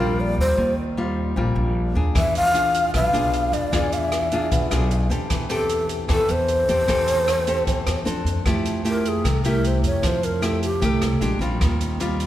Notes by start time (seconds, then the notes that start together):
Already playing: A#2 G3 A#4
0.00 A#1 C4 F4
0.21 D5
0.38 D#2 C5
0.57 D#2 D#3
0.97 G3 C4 F4
1.36 A#1 A#2 G3 C4 F4
1.56 A#1
1.95 D#2 D4 G#4
2.15 E2 E3 E5, kick, cross-stick, closed hi-hat
2.35 F5, closed hi-hat
2.54 D4 F4 G#4, closed hi-hat
2.75 closed hi-hat
2.94 B1 B2 F5, kick, cross-stick, closed hi-hat
3.13 B1 D4 F4 G#4, closed hi-hat
3.33 closed hi-hat
3.52 E2 D5, closed hi-hat
3.72 E2 E3 D4 F4 G#4, kick, cross-stick, closed hi-hat
3.92 F5, closed hi-hat
3.98 E5
4.12 cross-stick, closed hi-hat
4.32 D4 F4 G#4, closed hi-hat
4.51 B1 B2, kick, closed hi-hat
4.71 B1 D4 F4 G#4, cross-stick, closed hi-hat
4.91 closed hi-hat
5.09 E2 C4 G4 A4, closed hi-hat
5.30 E2 E3, kick, cross-stick, closed hi-hat
5.49 C4 G4 A4, closed hi-hat
5.69 closed hi-hat
5.89 closed hi-hat
6.08 E2 E3 C4 G4 A4, kick, cross-stick, closed hi-hat
6.29 E2 C5, closed hi-hat
6.48 closed hi-hat
6.68 E2 C4 G4 A4, closed hi-hat
6.88 E2 E3 C4 G4 A4, kick, cross-stick, closed hi-hat
7.08 closed hi-hat
7.28 cross-stick, closed hi-hat
7.47 C4 G4 A4, closed hi-hat
7.67 E2 E3, kick, closed hi-hat
7.86 E2, cross-stick, closed hi-hat
8.05 F2 C4 D4 A4, closed hi-hat
8.25 F2, closed hi-hat
8.46 F2 F3 A3 E4 G4, kick, cross-stick, closed hi-hat
8.65 closed hi-hat
8.84 A3 E4 G4, closed hi-hat
8.89 A#4
9.05 G#4, closed hi-hat
9.24 C2 C3, kick, cross-stick, closed hi-hat
9.29 A4
9.44 C2 A3 E4 G4 A#4, closed hi-hat
9.64 C5, closed hi-hat
9.83 F2 C#5, closed hi-hat
10.02 F2 F3, kick, cross-stick, closed hi-hat
10.07 C5
10.23 A#4, closed hi-hat
10.41 A3 E4 G4 A4, cross-stick, closed hi-hat
10.63 G4, closed hi-hat
10.81 C2 C3 A3 E4 G4 A#4, kick, closed hi-hat
10.89 A4
11.01 C2, cross-stick, closed hi-hat
11.21 A#1 G#3 D4 G4, closed hi-hat
11.39 A#1 G3 C4 F4, closed hi-hat
11.61 D#2 D#3, kick, cross-stick, closed hi-hat
11.81 closed hi-hat
12.00 G3 C4 F4, closed hi-hat
12.20 closed hi-hat